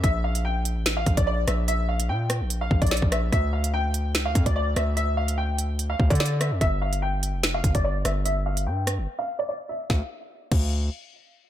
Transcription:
<<
  \new Staff \with { instrumentName = "Upright piano" } { \time 4/4 \key d \minor \tempo 4 = 146 e''8 f''8 g''4~ g''16 f''8 d''16 d''8 e''8 | e''8 f''8 g''4~ g''16 f''8 d''16 d''8 e''8 | e''8 f''8 g''4~ g''16 f''8 d''16 d''8 e''8 | e''8 f''8 g''4~ g''16 f''8 d''16 d''8 e''8 |
e''8 f''8 g''4~ g''16 f''8 d''16 d''8 e''8 | e''8 f''8 g''4~ g''16 f''8 d''16 d''8 e''8 | f''8 r4 f''8 r2 | }
  \new Staff \with { instrumentName = "808-style bass" } { \clef bass \time 4/4 \key d \minor bes,,4.~ bes,,16 a,,8. bes,,16 bes,,8. bes,,8~ | bes,,4 bes,8. bes,,8. bes,,16 bes,,8 bes,,8. | d,2 cis,16 d,16 f,16 d,8. d,8~ | d,2~ d,8 d,16 d4 f,16 |
g,,4.~ g,,16 f,,8. g,,16 g,,8. g,,8~ | g,,4 g,8. g,,16 r2 | d,16 r4 r16 d,4 r4. | }
  \new DrumStaff \with { instrumentName = "Drums" } \drummode { \time 4/4 <hh bd>8. hh16 r8 hh8 <hh sn>8 <hh bd>16 <hh bd>16 r8 <hh ss>8 | hh8. hh16 r8 <hh ss>8 hh8 bd16 <hh bd>32 hh32 <hh sn>32 hh32 bd16 <hh ss>8 | <hh bd>8. hh16 r8 hh8 <hh sn>8 <hh bd>16 <hh bd>16 r8 <hh ss>8 | hh8. hh16 r8 hh8 hh8 bd16 <hh bd>32 hh32 <hh sn>32 hh16. <hh ss>8 |
<hh bd>8. hh16 r8 hh8 <hh sn>8 <hh bd>16 <hh bd>16 r8 <hh ss>8 | hh8. hh16 r8 <hh ss>8 r4 r4 | <bd sn>4 r8 <cymc bd>8 r4 r4 | }
>>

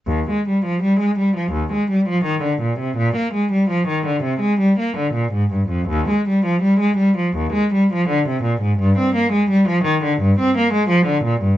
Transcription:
\new Staff \with { instrumentName = "Cello" } { \clef bass \time 4/4 \key ees \major \tempo 4 = 83 ees,16 aes16 g16 f16 g16 aes16 g16 f16 ees,16 aes16 g16 f16 ees16 d16 bes,16 c16 | bes,16 bes16 aes16 g16 f16 ees16 d16 c16 aes16 g16 bes16 d16 bes,16 aes,16 g,16 f,16 | ees,16 aes16 g16 f16 g16 aes16 g16 f16 ees,16 aes16 g16 f16 d16 c16 bes,16 aes,16 | g,16 c'16 bes16 aes16 g16 f16 ees16 d16 g,16 c'16 bes16 aes16 f16 d16 bes,16 g,16 | }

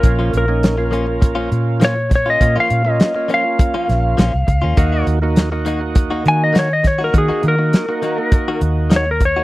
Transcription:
<<
  \new Staff \with { instrumentName = "Electric slide guitar" } { \time 4/4 \key bes \minor \tempo 4 = 101 bes'8 bes'2 r8 des''8 des''16 ees''16~ | ees''16 f''8 ees''8. f''2~ f''8~ | f''8 r2 aes''16 ees''16 des''16 ees''16 des''16 bes'16 | aes'8 bes'2 r8 des''16 bes'16 des''8 | }
  \new Staff \with { instrumentName = "Tonewheel organ" } { \time 4/4 \key bes \minor <bes des' f'>8. <bes des' ees'>8 <bes des' f'>4.~ <bes des' f'>16 r4 | <bes des' f'>8. <bes des' f'>8 <bes des' f'>4.~ <bes des' f'>16 r4 | <bes ees' ges'>8. <bes ees' ges'>8 <bes ees' ges'>4.~ <bes ees' ges'>16 r4 | <bes ees' ges'>8. <bes ees' ges'>8 <bes ees' ges'>4.~ <bes ees' ges'>16 r4 | }
  \new Staff \with { instrumentName = "Clean electric guitar" } { \time 4/4 \key bes \minor r16 <f bes des' f'>16 r4 <f bes des' f'>16 r8 <f bes des' f'>16 r8 <f bes des' f'>16 r8 <bes des' f'>16 | r16 <f bes des' f'>16 r4 <f bes des' f'>16 r8 <f bes des' f'>16 r8 <f bes des' f'>16 r8 <bes des' f'>16 | <ees bes ees' ges'>16 <ees bes ees' ges'>16 r4 <ees bes ees' ges'>16 r8 <ees bes ees' ges'>16 r8 <ees bes ees' ges'>16 r8 <bes ees' ges'>16 | r16 <ees bes ees' ges'>16 r4 <ees bes ees' ges'>16 r8 <ees bes ees' ges'>16 r8 <ees bes ees' ges'>16 r8 <bes ees' ges'>16 | }
  \new Staff \with { instrumentName = "Fingered electric bass" } { \clef bass \time 4/4 \key bes \minor bes,,8 bes,,2 bes,4. | bes,16 r16 bes,8 r4. bes,,8 bes,,16 c,16 des,16 ees,16 | ees,8 ees,2 ees4. | ees16 r16 ees8 r4. ees,4. | }
  \new DrumStaff \with { instrumentName = "Drums" } \drummode { \time 4/4 <hh bd>8 hh8 <hh sn>8 hh8 <hh bd>8 hh8 <hh sn>8 <hh bd sn>8 | <hh bd>8 hh8 <hh sn>8 hh8 <hh bd>8 <hh sn>8 <hh sn>8 <hh bd>8 | <hh bd>8 hh8 <hh sn>8 hh8 <hh bd>8 hh8 <hh sn>8 <hh bd sn>8 | <hh bd>8 hh8 <hh sn>8 hh8 <hh bd>8 hh8 <hh sn>8 <hh bd>8 | }
>>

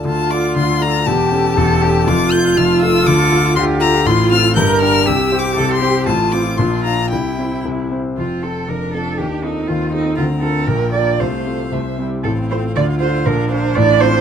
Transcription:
<<
  \new Staff \with { instrumentName = "Violin" } { \time 2/4 \key d \minor \tempo 4 = 119 a''8 d'''8 c'''8 bes''8 | a''2 | d'''8 g'''8 f'''8 e'''8 | d'''4 c'''8 bes''8 |
\key f \major c'''8 f'''8 g'''8 f'''8 | \tuplet 3/2 { e'''4 d'''8~ d'''8 c'''4 } | a''8 d'''8 c'''8 bes''8 | g''4 r4 |
f'8 a'8 bes'8 a'8 | g'8 ees'8 f'8 ees'8 | bes''4 g''4 | f''4 e''8 r8 |
f''2~ | f''2 | }
  \new Staff \with { instrumentName = "Cello" } { \time 2/4 \key d \minor f'2 | g'4 a'8 g'8 | f'2 | a'4 g'4 |
\key f \major f'4 bes'4 | g'4 a'8 g'8 | f'4 f'4 | e'4. r8 |
f'8 a'8 bes'8 a'8 | g'8 ees'8 f'8 ees'8 | f'8 a'8 bes'8 d''8 | c''4. r8 |
a'8 c''8 d''8 c''8 | bes'8 c''8 d''8 c''8 | }
  \new Staff \with { instrumentName = "Viola" } { \time 2/4 \key d \minor f'2 | g'2 | f'2~ | f'2 |
\key f \major f'4 bes'4 | g'2 | f'4 d'4 | e'4. r8 |
c'4 d'4~ | d'4 c'4~ | c'4 bes4 | a4 a8 g8 |
c'4 f'4 | d'2 | }
  \new Staff \with { instrumentName = "Grand piano" } { \time 2/4 \key d \minor <d, d>8 <f' a' d''>8 <d, d>8 <f' a' d''>8 | <e,, e,>8 <cis' g' a'>8 <e,, e,>8 <cis' g' a'>8 | <f,, f,>8 <a f' a'>8 <f,, f,>8 <a f' a'>8 | <d, d>8 <a f' a'>8 <d, d>8 <a f' a'>8 |
\key f \major <a,, a,>8 <c' f' a'>8 <g,, g,>8 <d' g' bes'>8 | <c, c>8 <c' g' c''>8 <c, c>8 <c' g' c''>8 | <a,, a,>8 <c' f' c''>8 <bes,, bes,>8 <d' f' f''>8 | <c, c>8 <c' e' c''>8 <c, c>8 <c' e' c''>8 |
<f,, f,>8 <c' f' a'>8 <f,, f,>8 <c' f' a'>8 | <ees, ees>8 <c' f' a'>8 <ees, ees>8 <c' f' a'>8 | <d, d>8 <d' f' bes'>8 <bes,, bes,>8 <d' f' bes'>8 | <c, c>8 <c' f' a'>8 <c, c>8 <c' e' g'>8 |
<a,, a,>8 <c' f' a'>8 <d, d>8 <d' f' a'>8 | <bes,, bes,>8 <d' f' bes'>8 <a,, a,>8 <c' f'>8 | }
>>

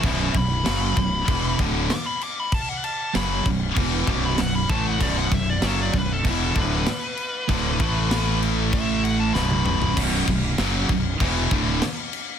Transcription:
<<
  \new Staff \with { instrumentName = "Lead electric guitar" } { \time 4/4 \key b \minor \tempo 4 = 97 <b' e''>8 b''2 r8 d'''16 b''16 d'''16 b''16 | a''16 fis''16 a''8 b''8 r4 d'''16 b''16 fis''16 b''16 a''16 fis''16 | d''16 fis''16 e''16 d''16 a'16 d''16 b'16 a'16 e'16 a'16 b'4.~ | b'4. r8 e''8 fis''16 a''16 b''8 b''8 |
r1 | }
  \new Staff \with { instrumentName = "Distorted electric guitar" } { \clef bass \time 4/4 \key b \minor <b,, fis, b,>8 <b,, fis,>8 <fis, cis fis>8 <b,, fis,>8 <e, b, e>8 <d, a, d>8 r4 | r4 <fis, cis fis>8 <b,, fis,>8 <e, b, e>8 <b,, fis, b,>8 <b,, fis,>8 <a, e a>8 | <b,, fis, b,>8 <b,, fis,>8 <fis, cis fis>8 <b,, fis,>8 <e, b, e>8 <d, a, d>8 r4 | <d, a, d>8 <a, e a>2~ <a, e a>8 <b,, fis, b,>4 |
<b,, fis, b,>8 <b,, fis,>8 <fis, cis fis>8 <b,, fis,>8 <e, b, e>8 <d, a, d>8 r4 | }
  \new Staff \with { instrumentName = "Distorted electric guitar" } { \clef bass \time 4/4 \key b \minor <b,, fis, b,>8 <b,, fis,>8 <fis, cis fis>8 <b,, fis,>8 <e, b, e>8 <d, a, d>8 r4 | r4 <fis, cis fis>8 <b,, fis,>8 <e, b, e>8 <b,, fis, b,>8 <b,, fis,>8 <a, e a>8 | <b,, fis, b,>8 <b,, fis,>8 <fis, cis fis>8 <b,, fis,>8 <e, b, e>8 <d, a, d>8 r4 | <d, a, d>8 <a, e a>2~ <a, e a>8 <b,, fis, b,>4 |
<b,, fis, b,>8 <b,, fis,>8 <fis, cis fis>8 <b,, fis,>8 <e, b, e>8 <d, a, d>8 r4 | }
  \new Staff \with { instrumentName = "Fingered electric bass" } { \clef bass \time 4/4 \key b \minor b,,,8 b,,,8 fis,,8 b,,,8 e,,8 d,,8 r4 | r4 fis,,8 b,,,8 e,,8 b,,,8 b,,,8 a,,8 | b,,,8 b,,,8 fis,,8 b,,,8 e,,8 d,,8 r4 | d,,8 a,,2~ a,,8 b,,,4 |
b,,,8 b,,,8 fis,,8 b,,,8 e,,8 d,,8 r4 | }
  \new DrumStaff \with { instrumentName = "Drums" } \drummode { \time 4/4 <cymc bd>8 <cymc bd>8 <cymc sn>8 <cymc bd>8 <cymc bd>8 <cymc bd>8 <cymc sn>8 cymc8 | <cymc bd>8 cymc8 <cymc sn>8 <cymc bd>8 <cymc bd>8 <cymc bd>8 <cymc sn>8 <cymc bd>8 | <cymc bd>8 <cymc bd>8 <cymc sn>8 <cymc bd>8 <cymc bd>8 <cymc bd>8 <cymc sn>8 cymc8 | <cymc bd>8 <cymc bd>8 <cymc sn>8 cymc8 <cymc bd>8 cymc8 sn16 tommh16 toml16 tomfh16 |
<cymc bd>8 <cymc bd>8 <cymc sn>8 <cymc bd>8 <cymc bd>8 <cymc bd>8 <cymc sn>8 cymc8 | }
>>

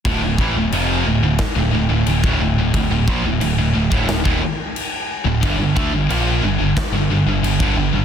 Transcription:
<<
  \new Staff \with { instrumentName = "Distorted electric guitar" } { \clef bass \time 4/4 \key d \minor \tempo 4 = 90 <d, a,>16 <d, a,>16 <a, e>16 <d, a,>16 <f, c f>8 <d, a,>16 <d, a,>16 r16 <d, a,>16 <d, a,>16 <d, a,>16 <d, a,>16 <d, a,>16 <d, a,>16 <d, a,>16 | <d, a,>16 <d, a,>16 <bes, f>16 <d, a,>16 <d, a,>16 <d, a,>16 <d, a,>16 <d, a,>16 <d, a,>16 <ees, bes,>16 r4 r16 <d, a,>16 | <g, d>16 <g, d>16 <d a>16 <g, d>16 <bes, f bes>8 <g, d>16 <g, d>16 r16 <g, d>16 <g, d>16 <g, d>16 <g, d>16 <g, d>16 <g, d>16 <g, d>16 | }
  \new Staff \with { instrumentName = "Distorted electric guitar" } { \clef bass \time 4/4 \key d \minor <d, a,>16 <d, a,>16 <a, e>16 <d, a,>16 <f, c f>8 <d, a,>16 <d, a,>16 r16 <d, a,>16 <d, a,>16 <d, a,>16 <d, a,>16 <d, a,>16 <d, a,>16 <d, a,>16 | <d, a,>16 <d, a,>16 <bes, f>16 <d, a,>16 <d, a,>16 <d, a,>16 <d, a,>16 <d, a,>16 <d, a,>16 <ees, bes,>16 r4 r16 <d, a,>16 | <g, d>16 <g, d>16 <d a>16 <g, d>16 <bes, f bes>8 <g, d>16 <g, d>16 r16 <g, d>16 <g, d>16 <g, d>16 <g, d>16 <g, d>16 <g, d>16 <g, d>16 | }
  \new Staff \with { instrumentName = "Picked electric bass" } { \clef bass \time 4/4 \key d \minor d,,16 d,,16 a,,16 d,,16 f,,8 d,,16 d,,16 r16 d,,16 d,,16 d,,16 d,,16 d,,16 d,,16 d,,16 | d,,16 d,,16 bes,,16 d,,16 d,,16 d,,16 d,,16 d,,16 d,,16 ees,,16 r4 r16 d,,16 | g,,16 g,,16 d,16 g,,16 bes,,8 g,,16 g,,16 r16 g,,16 g,,16 g,,16 g,,16 g,,16 g,,16 g,,16 | }
  \new DrumStaff \with { instrumentName = "Drums" } \drummode { \time 4/4 <cymc bd>8 bd8 cymc4 <cymc bd sn>4 cymc16 bd8. | <cymc bd>8 bd8 cymc8. bd16 <cymc sn>16 bd8. cymc4 | <cymc bd>8 bd8 cymc4 <cymc bd sn>4 cymc16 bd8. | }
>>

